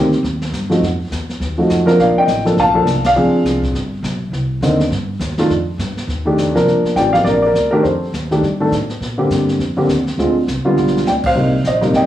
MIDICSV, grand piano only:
0, 0, Header, 1, 2, 480
1, 0, Start_track
1, 0, Tempo, 292540
1, 1347, Time_signature, 4, 2, 24, 8
1, 19790, End_track
2, 0, Start_track
2, 0, Title_t, "Grand piano"
2, 0, Program_c, 0, 0
2, 0, Note_on_c, 0, 51, 67
2, 0, Note_on_c, 0, 58, 56
2, 0, Note_on_c, 0, 60, 59
2, 0, Note_on_c, 0, 67, 66
2, 167, Note_off_c, 0, 51, 0
2, 170, Note_off_c, 0, 58, 0
2, 173, Note_off_c, 0, 60, 0
2, 176, Note_off_c, 0, 67, 0
2, 1142, Note_on_c, 0, 53, 61
2, 1150, Note_on_c, 0, 57, 55
2, 1157, Note_on_c, 0, 63, 52
2, 1164, Note_on_c, 0, 66, 60
2, 1323, Note_off_c, 0, 53, 0
2, 1326, Note_off_c, 0, 57, 0
2, 1330, Note_off_c, 0, 63, 0
2, 1333, Note_off_c, 0, 66, 0
2, 2587, Note_on_c, 0, 53, 61
2, 2594, Note_on_c, 0, 57, 51
2, 2603, Note_on_c, 0, 63, 49
2, 2611, Note_on_c, 0, 66, 61
2, 3023, Note_off_c, 0, 53, 0
2, 3044, Note_off_c, 0, 57, 0
2, 3048, Note_off_c, 0, 63, 0
2, 3048, Note_on_c, 0, 53, 65
2, 3053, Note_off_c, 0, 66, 0
2, 3059, Note_on_c, 0, 58, 60
2, 3067, Note_on_c, 0, 62, 60
2, 3068, Note_on_c, 0, 70, 81
2, 3286, Note_on_c, 0, 77, 71
2, 3315, Note_on_c, 0, 74, 61
2, 3542, Note_off_c, 0, 77, 0
2, 3557, Note_off_c, 0, 74, 0
2, 3580, Note_on_c, 0, 79, 92
2, 3603, Note_on_c, 0, 75, 59
2, 3695, Note_off_c, 0, 53, 0
2, 3700, Note_off_c, 0, 58, 0
2, 3704, Note_off_c, 0, 62, 0
2, 3705, Note_off_c, 0, 70, 0
2, 4012, Note_off_c, 0, 79, 0
2, 4018, Note_on_c, 0, 53, 58
2, 4025, Note_off_c, 0, 75, 0
2, 4027, Note_on_c, 0, 58, 55
2, 4036, Note_on_c, 0, 62, 50
2, 4040, Note_on_c, 0, 69, 59
2, 4199, Note_off_c, 0, 53, 0
2, 4204, Note_off_c, 0, 58, 0
2, 4208, Note_off_c, 0, 62, 0
2, 4210, Note_off_c, 0, 69, 0
2, 4261, Note_on_c, 0, 81, 100
2, 4270, Note_on_c, 0, 77, 78
2, 4492, Note_on_c, 0, 53, 65
2, 4508, Note_on_c, 0, 58, 62
2, 4509, Note_on_c, 0, 62, 56
2, 4516, Note_on_c, 0, 69, 68
2, 4676, Note_off_c, 0, 53, 0
2, 4684, Note_off_c, 0, 58, 0
2, 4685, Note_off_c, 0, 62, 0
2, 4688, Note_off_c, 0, 69, 0
2, 4960, Note_off_c, 0, 77, 0
2, 5023, Note_on_c, 0, 74, 62
2, 5027, Note_on_c, 0, 77, 83
2, 5030, Note_off_c, 0, 81, 0
2, 5187, Note_on_c, 0, 53, 54
2, 5188, Note_on_c, 0, 60, 54
2, 5190, Note_on_c, 0, 62, 50
2, 5204, Note_on_c, 0, 68, 64
2, 5900, Note_off_c, 0, 74, 0
2, 5902, Note_off_c, 0, 77, 0
2, 6145, Note_off_c, 0, 53, 0
2, 6145, Note_off_c, 0, 60, 0
2, 6146, Note_off_c, 0, 62, 0
2, 6153, Note_off_c, 0, 68, 0
2, 7589, Note_on_c, 0, 50, 61
2, 7590, Note_on_c, 0, 58, 57
2, 7599, Note_on_c, 0, 60, 52
2, 7601, Note_on_c, 0, 63, 68
2, 7842, Note_off_c, 0, 50, 0
2, 7843, Note_off_c, 0, 58, 0
2, 7847, Note_off_c, 0, 60, 0
2, 7848, Note_off_c, 0, 63, 0
2, 8839, Note_on_c, 0, 51, 65
2, 8843, Note_on_c, 0, 57, 57
2, 8851, Note_on_c, 0, 62, 55
2, 8853, Note_on_c, 0, 65, 73
2, 9008, Note_off_c, 0, 51, 0
2, 9010, Note_off_c, 0, 57, 0
2, 9014, Note_off_c, 0, 62, 0
2, 9015, Note_off_c, 0, 65, 0
2, 10259, Note_on_c, 0, 51, 56
2, 10267, Note_on_c, 0, 57, 56
2, 10279, Note_on_c, 0, 62, 60
2, 10284, Note_on_c, 0, 67, 64
2, 10714, Note_off_c, 0, 51, 0
2, 10718, Note_off_c, 0, 57, 0
2, 10724, Note_off_c, 0, 62, 0
2, 10726, Note_off_c, 0, 67, 0
2, 10743, Note_on_c, 0, 53, 68
2, 10752, Note_on_c, 0, 58, 67
2, 10756, Note_on_c, 0, 62, 64
2, 10758, Note_on_c, 0, 70, 79
2, 11380, Note_off_c, 0, 53, 0
2, 11385, Note_off_c, 0, 58, 0
2, 11387, Note_off_c, 0, 62, 0
2, 11387, Note_off_c, 0, 70, 0
2, 11424, Note_on_c, 0, 79, 88
2, 11425, Note_on_c, 0, 52, 43
2, 11433, Note_on_c, 0, 57, 39
2, 11433, Note_on_c, 0, 61, 42
2, 11442, Note_on_c, 0, 66, 49
2, 11459, Note_on_c, 0, 74, 69
2, 11679, Note_off_c, 0, 52, 0
2, 11683, Note_off_c, 0, 61, 0
2, 11684, Note_off_c, 0, 57, 0
2, 11688, Note_off_c, 0, 66, 0
2, 11695, Note_on_c, 0, 77, 86
2, 11706, Note_off_c, 0, 74, 0
2, 11707, Note_on_c, 0, 53, 40
2, 11709, Note_on_c, 0, 58, 39
2, 11716, Note_off_c, 0, 79, 0
2, 11716, Note_on_c, 0, 62, 37
2, 11721, Note_on_c, 0, 67, 45
2, 11754, Note_on_c, 0, 74, 70
2, 11861, Note_off_c, 0, 74, 0
2, 11886, Note_on_c, 0, 74, 88
2, 11901, Note_off_c, 0, 77, 0
2, 11954, Note_on_c, 0, 70, 70
2, 12129, Note_off_c, 0, 53, 0
2, 12130, Note_off_c, 0, 58, 0
2, 12134, Note_off_c, 0, 62, 0
2, 12137, Note_off_c, 0, 67, 0
2, 12154, Note_off_c, 0, 74, 0
2, 12178, Note_on_c, 0, 74, 79
2, 12195, Note_off_c, 0, 70, 0
2, 12246, Note_on_c, 0, 70, 65
2, 12624, Note_off_c, 0, 70, 0
2, 12628, Note_off_c, 0, 74, 0
2, 12649, Note_on_c, 0, 70, 76
2, 12671, Note_on_c, 0, 51, 66
2, 12673, Note_on_c, 0, 57, 62
2, 12677, Note_on_c, 0, 62, 61
2, 12684, Note_on_c, 0, 67, 75
2, 12838, Note_off_c, 0, 70, 0
2, 12844, Note_off_c, 0, 51, 0
2, 12845, Note_off_c, 0, 57, 0
2, 12847, Note_off_c, 0, 62, 0
2, 12848, Note_on_c, 0, 72, 62
2, 12850, Note_off_c, 0, 67, 0
2, 12910, Note_on_c, 0, 69, 49
2, 13300, Note_off_c, 0, 72, 0
2, 13334, Note_off_c, 0, 69, 0
2, 13633, Note_on_c, 0, 51, 62
2, 13642, Note_on_c, 0, 57, 54
2, 13648, Note_on_c, 0, 62, 53
2, 13651, Note_on_c, 0, 67, 66
2, 13805, Note_off_c, 0, 51, 0
2, 13809, Note_off_c, 0, 57, 0
2, 13812, Note_off_c, 0, 62, 0
2, 13814, Note_off_c, 0, 67, 0
2, 14116, Note_on_c, 0, 51, 56
2, 14117, Note_on_c, 0, 57, 57
2, 14124, Note_on_c, 0, 62, 60
2, 14134, Note_on_c, 0, 69, 63
2, 14286, Note_off_c, 0, 51, 0
2, 14287, Note_off_c, 0, 57, 0
2, 14290, Note_off_c, 0, 62, 0
2, 14295, Note_off_c, 0, 69, 0
2, 15061, Note_on_c, 0, 50, 62
2, 15066, Note_on_c, 0, 58, 55
2, 15071, Note_on_c, 0, 60, 52
2, 15081, Note_on_c, 0, 67, 67
2, 15700, Note_off_c, 0, 50, 0
2, 15703, Note_off_c, 0, 58, 0
2, 15705, Note_off_c, 0, 60, 0
2, 15710, Note_off_c, 0, 67, 0
2, 16028, Note_on_c, 0, 50, 68
2, 16039, Note_on_c, 0, 58, 61
2, 16041, Note_on_c, 0, 60, 58
2, 16049, Note_on_c, 0, 67, 66
2, 16203, Note_off_c, 0, 50, 0
2, 16208, Note_off_c, 0, 58, 0
2, 16210, Note_off_c, 0, 60, 0
2, 16214, Note_off_c, 0, 67, 0
2, 16716, Note_on_c, 0, 50, 53
2, 16728, Note_on_c, 0, 56, 50
2, 16733, Note_on_c, 0, 60, 52
2, 16734, Note_on_c, 0, 65, 57
2, 16966, Note_off_c, 0, 50, 0
2, 16972, Note_off_c, 0, 56, 0
2, 16975, Note_off_c, 0, 60, 0
2, 16975, Note_off_c, 0, 65, 0
2, 17473, Note_on_c, 0, 50, 64
2, 17479, Note_on_c, 0, 59, 57
2, 17483, Note_on_c, 0, 55, 57
2, 17485, Note_on_c, 0, 65, 70
2, 18107, Note_off_c, 0, 50, 0
2, 18111, Note_off_c, 0, 59, 0
2, 18112, Note_off_c, 0, 55, 0
2, 18113, Note_off_c, 0, 65, 0
2, 18168, Note_on_c, 0, 79, 77
2, 18200, Note_on_c, 0, 74, 56
2, 18250, Note_off_c, 0, 79, 0
2, 18282, Note_off_c, 0, 74, 0
2, 18476, Note_on_c, 0, 77, 87
2, 18496, Note_on_c, 0, 72, 65
2, 18628, Note_on_c, 0, 48, 53
2, 18631, Note_on_c, 0, 55, 46
2, 18639, Note_on_c, 0, 63, 56
2, 18640, Note_on_c, 0, 58, 46
2, 18884, Note_off_c, 0, 48, 0
2, 18885, Note_off_c, 0, 55, 0
2, 18889, Note_off_c, 0, 63, 0
2, 18890, Note_off_c, 0, 58, 0
2, 19083, Note_off_c, 0, 77, 0
2, 19094, Note_off_c, 0, 72, 0
2, 19152, Note_on_c, 0, 75, 70
2, 19167, Note_on_c, 0, 72, 56
2, 19380, Note_on_c, 0, 48, 69
2, 19392, Note_on_c, 0, 55, 60
2, 19392, Note_on_c, 0, 58, 61
2, 19402, Note_on_c, 0, 63, 73
2, 19578, Note_off_c, 0, 75, 0
2, 19585, Note_off_c, 0, 72, 0
2, 19618, Note_on_c, 0, 79, 92
2, 19634, Note_on_c, 0, 75, 71
2, 19790, Note_off_c, 0, 48, 0
2, 19790, Note_off_c, 0, 55, 0
2, 19790, Note_off_c, 0, 58, 0
2, 19790, Note_off_c, 0, 63, 0
2, 19790, Note_off_c, 0, 75, 0
2, 19790, Note_off_c, 0, 79, 0
2, 19790, End_track
0, 0, End_of_file